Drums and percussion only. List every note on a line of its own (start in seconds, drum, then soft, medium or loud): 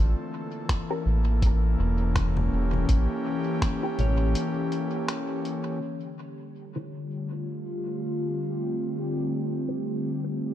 0.69 finger snap medium
0.69 kick loud
0.69 closed hi-hat soft
1.42 kick loud
1.42 closed hi-hat medium
2.16 finger snap medium
2.16 kick loud
2.16 closed hi-hat medium
2.16 low conga medium
2.37 low conga medium
2.73 low conga medium
2.89 kick loud
2.89 closed hi-hat soft
3.62 finger snap medium
3.62 kick loud
3.62 closed hi-hat medium
3.99 closed hi-hat soft
3.99 low conga medium
4.35 closed hi-hat medium
4.72 closed hi-hat soft
5.08 finger snap medium
5.08 closed hi-hat medium
5.45 closed hi-hat soft